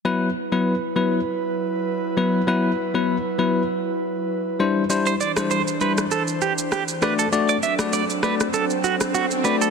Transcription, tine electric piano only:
X:1
M:4/4
L:1/16
Q:"Swing 16ths" 1/4=99
K:Em
V:1 name="Tine electric piano"
[F,B,EB] z2 [F,B,EB] z2 [F,B,EB] z6 z [F,B,EB] z | [F,B,EB] z2 [F,B,EB] z2 [F,B,EB] z6 z [G,DEc] z | [G,DEc] z2 [G,DEc] z2 [G,DEc] z6 z [A,DFd] z | [A,DFd] z2 [A,DFd] z2 [A,DFd] z6 z [A,DFd] z |]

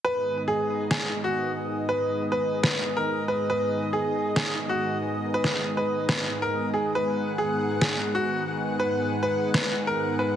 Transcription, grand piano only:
X:1
M:4/4
L:1/16
Q:"Swing 16ths" 1/4=139
K:G#m
V:1 name="Grand piano"
B3 z G3 z G2 z F2 z3 | z B3 z B2 z B2 z A2 z B2 | B3 z G3 z G2 z F2 z3 | z B3 z B2 z B2 z A2 z G2 |
B3 z G3 z G2 z F2 z3 | z B3 z B2 z B2 z A2 z B2 |]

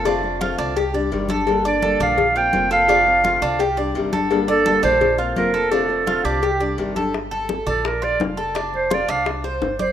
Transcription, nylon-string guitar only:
X:1
M:4/4
L:1/8
Q:1/4=170
K:Gm
V:1 name="Nylon-string guitar"
[D,A,CF] [A,CF] [D,A,CF]2 z [G,DG] [C,E,G,DG] [G,DG] | [D,G,B,DA] [B,DA] [D,G,B,DA]2 z [B,CF] [D,B,CF] [B,CF] | [D,A,CF] [A,C] [D,A,CF]2 z [G,DG] [C,E,G,DG] [G,DG] | [D,G,B,DA] [B,DA] [D,G,B,DA]2 z [B,CF] [D,B,CF] [B,C] |
[D,A,CF] [A,CF] [D,A,CF]2 z [G,DG] [C,E,G,DG] [G,DG] | z8 | z8 |]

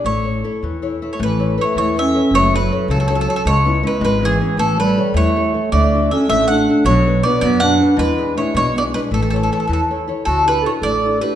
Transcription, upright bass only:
X:1
M:6/8
L:1/8
Q:3/8=106
K:A
V:1 name="Upright bass" clef=bass
A,,,3 E,,3 | A,,,3 E,,3 | F,,,3 C,,3 | C,,3 G,,,3 |
A,,,3 E,,3 | D,,3 A,,,3 | B,,,3 F,,3 | E,,3 B,,,3 |
A,,,3 E,,3 | [K:D] D,,3 A,,,3 |]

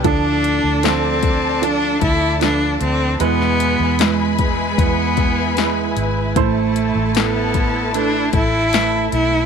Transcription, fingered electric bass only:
X:1
M:4/4
L:1/16
Q:1/4=76
K:Am
V:1 name="Fingered electric bass" clef=bass
D,,3 D,,6- D,, D,,4 D,,2 | E,,3 E,,4- E,, E,,6 ^G,,,2 | A,,,3 A,,,6- A,,, A,,,4 B,,,2 |]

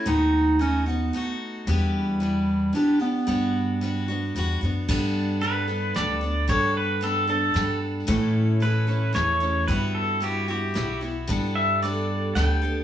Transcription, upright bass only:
X:1
M:3/4
L:1/8
Q:1/4=112
K:Glyd
V:1 name="Upright bass" clef=bass
^D,,4 z2 | E,,4 z2 | G,,4 E,, F,, | G,,4 D,,2 |
G,,4 G,,2 | A,,4 E,,2 | G,,4 B,,,2 | G,,4 D,,2 |]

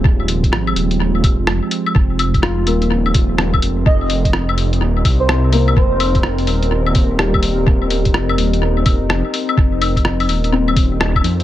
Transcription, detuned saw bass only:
X:1
M:4/4
L:1/16
Q:"Swing 16ths" 1/4=126
K:Cphr
V:1 name="Detuned saw bass" clef=bass
E,,,4 A,,,2 E,,,4- E,,, F,,,2 z3 | F,,,6 E,,,6 E,,,2 F,,,2 | F,,,8 E,,,2 C,,6 | F,,,6 E,,,8- E,,,2- |
E,,,4 F,,,2 E,,,4- E,,, F,,,2 z3 | F,,,6 E,,,8 F,,2 |]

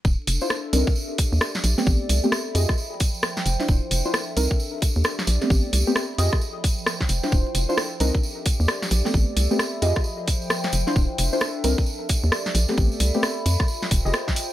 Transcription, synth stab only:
X:1
M:4/4
L:1/16
Q:"Swing 16ths" 1/4=132
K:Dm
V:1 name="Synth stab"
z3 [DEFc] z2 [CD_EB] z8 [A,=B,CG]- | [A,=B,CG]3 [A,B,CG] z2 [FG_A_e] z8 [D=EFc]- | [DEFc]3 [DEFc] z2 [CD_EB] z8 [A,=B,CG]- | [A,=B,CG]3 [A,B,CG] z2 [FG_A_e] z8 [D=EFc]- |
[DEFc]3 [DEFc] z2 [CD_EB] z8 [A,=B,CG]- | [A,=B,CG]3 [A,B,CG] z2 [FG_A_e] z8 [D=EFc]- | [DEFc]3 [DEFc] z2 [CD_EB] z8 [A,=B,CG]- | [A,=B,CG]3 [A,B,CG] z6 z [FG_A_e] z4 |]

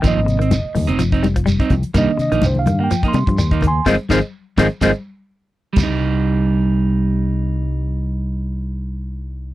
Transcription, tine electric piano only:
X:1
M:4/4
L:1/16
Q:"Swing 16ths" 1/4=126
K:Cm
V:1 name="Tine electric piano"
e8 z8 | e2 e2 c f2 [^fg]2 c'4- c' [ac']2 | [Ace]2 [Ace]2 z2 [Ace]2 [Ace]2 z6 | z16 |
z16 |]
V:2 name="Tine electric piano"
[F,B,C]2 z12 z2 | [E,B,D]6 z8 z2 | z16 | z16 |
z16 |]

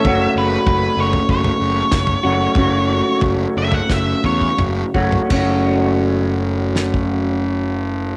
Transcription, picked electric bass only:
X:1
M:4/4
L:1/8
Q:1/4=88
K:F#m
V:1 name="Picked electric bass" clef=bass
F,,, F,,, F,,, F,,, F,,, F,,, F,,, F,,, | F,,,2 F,,, F,,, F,,, E,, F,,, F,,, | F,,,8 |]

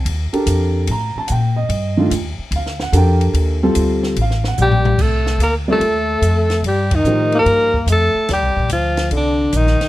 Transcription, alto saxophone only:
X:1
M:4/4
L:1/8
Q:"Swing" 1/4=146
K:Cdor
V:1 name="Alto saxophone"
z8 | z8 | z6 G2 | A2 B A4- A |
G E2 B3 A2 | G2 F2 D2 E2 |]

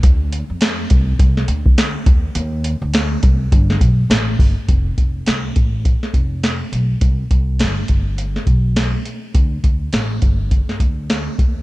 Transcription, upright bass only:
X:1
M:4/4
L:1/16
Q:"Swing 16ths" 1/4=103
K:Ddor
V:1 name="Upright bass" clef=bass
D,,3 F,,3 C,,2 C,,2 D,,4 _E,,2 | _E,,3 D,,3 C,,2 G,,,2 B,,,2 A,,,2 G,,, z | F,,,2 F,,,2 C,,2 A,,,3 z F,,,4 B,,,2 | C,,2 C,,2 G,,,2 G,,,4 B,,,4 z2 |
D,,2 D,,2 A,,,2 G,,,3 z D,,4 _E,,2 |]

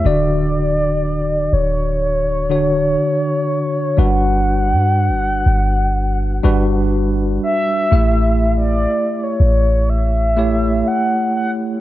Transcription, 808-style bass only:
X:1
M:4/4
L:1/16
Q:1/4=61
K:Glyd
V:1 name="808-style bass" clef=bass
D,,,6 D,,,6 z4 | G,,,3 G,,3/2 G,,,3/2 G,,,4 G,,,4 z2 | A,,,4 z2 A,,,6 z4 |]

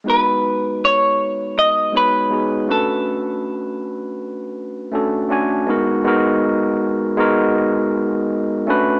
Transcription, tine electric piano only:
X:1
M:4/4
L:1/8
Q:"Swing 16ths" 1/4=80
K:Blyd
V:1 name="Tine electric piano"
[G,B,DFB]3 z2 [G,B,DFc] [G,B,DFG] [=A,C=DFB]- | [=A,C=DFB]2 z3 [A,CDF=A] [A,CDFg] [G,B,^DF^A] | [G,B,DFA]2 z [G,B,DFA]3 z [=A,C=DFB] |]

